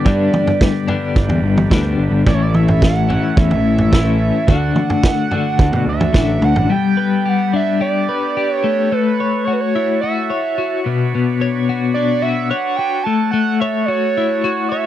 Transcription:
0.00 2.22 D4 medium
0.00 2.22 G4 medium
0.00 2.23 B4 medium
0.00 0.85 D5 medium
0.05 0.86 G2 medium
0.05 0.28 G2 medium
0.05 0.87 D3 medium
0.05 0.87 G3 medium
0.05 0.88 B3 medium
0.05 0.86 D4 medium
0.05 kick loud
0.05 floor tom medium
0.34 mid tom medium
0.47 floor tom medium
0.61 kick loud
0.61 snare medium
0.88 1.70 D3 medium
0.88 1.70 G3 medium
0.88 1.70 B3 medium
0.88 1.69 D4 medium
0.88 floor tom medium
0.92 1.69 G2 medium
1.16 1.27 G1 medium
1.16 kick medium
1.29 1.40 E2 medium
1.29 floor tom medium
1.42 1.65 G1 medium
1.57 floor tom medium
1.57 mid tom medium
1.70 1.94 D2 medium
1.70 2.24 G2 medium
1.70 2.25 D3 medium
1.70 2.25 G3 medium
1.70 2.26 B3 medium
1.70 kick medium
1.70 snare medium
1.70 mid tom medium
1.74 2.26 D4 medium
1.98 2.10 G1 medium
2.11 2.23 G1 medium
2.26 3.18 A1 medium
2.26 3.08 A2 medium
2.26 3.08 E3 medium
2.26 3.11 A3 medium
2.26 4.46 C#4 medium
2.26 3.08 C#4 medium
2.26 4.46 E4 medium
2.26 3.07 E4 medium
2.26 6.66 A4 medium
2.26 2.36 D5 medium
2.26 kick medium
2.26 floor tom medium
2.34 2.44 C#5 medium
2.42 2.56 D5 medium
2.54 2.83 E5 loud
2.54 mid tom medium
2.68 floor tom medium
2.81 3.39 F#5 loud
2.81 kick loud
2.81 snare medium
3.09 3.92 E3 medium
3.09 3.94 A3 medium
3.09 3.91 C#4 medium
3.09 3.90 E4 medium
3.09 floor tom medium
3.13 3.91 A2 medium
3.37 3.52 E2 medium
3.37 4.48 E5 loud
3.37 kick loud
3.50 4.30 A1 medium
3.50 floor tom medium
3.78 floor tom medium
3.92 4.46 A2 medium
3.92 4.47 E3 medium
3.92 4.48 A3 medium
3.92 4.48 C#4 medium
3.92 4.48 E4 medium
3.92 kick loud
3.92 snare medium
4.47 4.71 D2 medium
4.47 5.29 D3 medium
4.47 5.30 A3 medium
4.47 6.67 D4 medium
4.47 5.30 D4 medium
4.47 6.67 F#4 soft
4.47 5.30 F#4 medium
4.47 5.83 F#5 loud
4.47 kick medium
4.47 floor tom medium
4.76 mid tom medium
4.90 floor tom medium
5.03 kick loud
5.03 snare medium
5.31 6.12 D3 medium
5.31 6.13 A3 medium
5.31 6.13 D4 medium
5.31 6.12 F#4 medium
5.31 floor tom medium
5.59 5.70 D2 medium
5.59 kick loud
5.72 5.84 B2 medium
5.72 floor tom medium
5.86 6.09 D2 medium
5.86 6.46 E5 loud
6.01 floor tom medium
6.01 mid tom medium
6.13 6.37 A1 medium
6.13 6.67 D3 medium
6.13 6.68 A3 medium
6.13 6.69 D4 medium
6.13 6.69 F#4 medium
6.13 kick medium
6.13 snare soft
6.42 6.53 D2 medium
6.42 6.73 F#5 medium
6.42 mid tom medium
6.56 6.67 A1 medium
6.56 floor tom medium
6.69 8.08 G3 medium
6.69 8.89 B3 medium
6.69 8.88 G4 medium
6.69 10.80 A4 medium
6.69 7.30 G5 loud
6.97 8.08 B4 medium
7.25 7.80 G4 medium
7.25 7.54 F#5 medium
7.53 8.91 D4 medium
7.53 7.80 E5 medium
7.81 8.36 G4 medium
7.81 8.52 D5 loud
8.09 8.91 B4 medium
8.37 8.92 G4 medium
8.52 8.93 C#5 loud
8.64 8.91 A3 medium
8.91 10.30 A3 medium
8.91 10.83 F#4 medium
8.91 9.46 B4 loud
8.91 14.86 C#5 medium
9.20 10.30 C#5 medium
9.45 10.03 F#4 medium
9.45 9.54 C#5 medium
9.53 9.62 B4 medium
9.60 10.01 C#5 medium
9.76 10.85 E4 medium
10.01 10.58 F#4 medium
10.01 10.80 E5 medium
10.30 10.89 C#5 medium
10.58 11.69 F#4 medium
10.84 11.13 B2 medium
10.84 13.03 D4 medium
10.84 13.03 B4 medium
11.15 12.51 B2 medium
11.41 12.50 C#5 medium
11.69 12.21 F#4 medium
11.94 13.06 D4 medium
11.94 12.23 D5 loud
12.22 12.78 F#4 medium
12.22 12.51 E5 loud
12.50 13.06 C#5 medium
12.50 12.78 F#5 loud
12.76 13.06 F#4 medium
12.76 13.05 G5 loud
13.03 13.33 A3 medium
13.03 14.86 F#4 medium
13.03 14.86 A4 medium
13.03 13.31 A5 loud
13.31 14.86 A3 medium
13.31 13.61 F#5 loud
13.60 14.71 C#5 medium
13.60 13.87 E5 loud
13.85 14.43 F#4 medium
13.85 14.68 C#5 medium
14.17 14.86 E4 medium
14.44 14.86 F#4 medium
14.69 14.86 C#5 medium
14.69 14.86 E5 loud

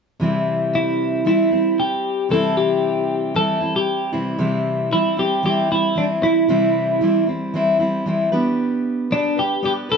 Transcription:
0.20 1.25 C3 medium
0.20 1.24 E3 medium
0.20 1.25 G3 medium
0.20 1.26 C4 medium
0.24 1.27 E4 medium
0.75 1.26 E4 medium
1.25 1.51 E3 soft
1.25 1.52 G3 medium
1.25 1.51 C4 medium
1.25 1.80 E4 medium
1.25 1.50 E4 medium
1.51 2.31 G3 soft
1.51 2.32 C4 soft
1.51 2.33 E4 soft
1.80 2.27 G4 medium
2.29 3.34 C3 medium
2.29 3.34 E3 medium
2.29 3.35 G3 medium
2.29 3.36 C4 medium
2.29 2.57 A4 medium
2.33 3.37 E4 medium
2.57 3.36 G4 medium
3.34 3.61 E3 medium
3.34 3.61 G3 medium
3.34 3.61 C4 medium
3.34 3.59 E4 medium
3.34 3.76 A4 medium
3.61 4.13 G3 soft
3.61 4.13 C4 soft
3.61 4.12 E4 soft
3.76 4.11 G4 medium
4.13 4.37 C3 soft
4.13 4.38 E3 soft
4.13 4.38 G3 soft
4.13 4.39 C4 soft
4.13 4.39 E4 medium
4.39 4.91 C3 medium
4.39 4.90 E3 medium
4.39 4.92 G3 medium
4.39 4.92 C4 medium
4.39 4.92 E4 medium
4.91 5.18 E3 soft
4.91 5.18 G3 soft
4.91 5.17 C4 soft
4.91 5.19 E4 medium
4.91 5.16 E4 medium
5.17 5.43 G3 soft
5.17 5.44 C4 soft
5.17 5.44 E4 soft
5.17 5.45 G4 medium
5.43 5.70 E3 medium
5.43 5.70 G3 soft
5.43 5.70 C4 medium
5.43 5.68 E4 medium
5.43 5.71 G4 medium
5.69 5.96 G3 soft
5.69 5.96 C4 soft
5.69 5.96 E4 soft
5.69 5.98 E4 medium
5.96 6.48 E3 medium
5.96 6.49 G3 soft
5.96 6.49 C4 medium
5.96 6.05 D4 medium
5.96 6.49 E4 medium
6.23 7.24 E4 medium
6.48 7.01 C3 medium
6.48 7.00 E3 medium
6.48 7.01 G3 medium
6.48 7.01 C4 medium
6.48 7.02 E4 medium
7.01 7.27 E3 medium
7.01 7.28 G3 soft
7.01 7.27 C4 medium
7.01 7.26 E4 medium
7.27 7.54 G3 soft
7.27 7.54 C4 soft
7.27 7.53 E4 soft
7.54 7.80 E3 medium
7.54 7.80 G3 medium
7.54 7.80 C4 medium
7.54 7.78 E4 medium
7.80 8.06 G3 soft
7.80 8.07 C4 soft
7.80 8.06 E4 medium
8.06 8.32 E3 medium
8.06 8.33 G3 medium
8.06 8.32 C4 medium
8.06 8.32 E4 medium
8.32 9.09 B3 medium
8.32 9.11 D4 medium
8.32 9.12 G4 medium
8.32 9.11 B4 medium
9.11 9.37 B3 soft
9.11 9.37 D4 soft
9.11 9.38 D4 medium
9.11 9.37 G4 soft
9.11 9.35 B4 soft
9.37 9.62 D4 soft
9.37 9.63 G4 soft
9.37 9.64 G4 medium
9.37 9.63 B4 soft
9.63 9.89 B3 medium
9.63 9.89 D4 medium
9.63 9.90 G4 medium
9.63 9.72 G4 medium
9.63 9.88 B4 medium
9.89 9.97 D4 soft
9.89 9.97 G4 soft
9.89 9.97 A4 medium
9.89 9.97 B4 soft

